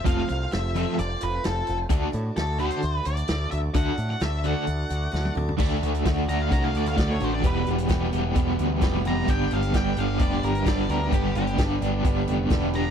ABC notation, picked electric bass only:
X:1
M:4/4
L:1/8
Q:1/4=130
K:Dmix
V:1 name="Picked electric bass" clef=bass
=F,,, C,, F,,,2 F,,, F,,, F,,, F,,, | D,, A,, D,,2 D,, D,, D,, D,, | D,, A,, D,,2 D,, D,, D,, D,, | D,, D,, D,, D,, C,, D,, D,, A,,, |
E,,, E,,, z E,,, E,,, D,, =F,,,2 | G,,, G,,, G,,, G,,, =F,,, G,,, G,,, D,, | G,,, G,,, G,,, G,,, G,,, =F,,, E,,,2 |]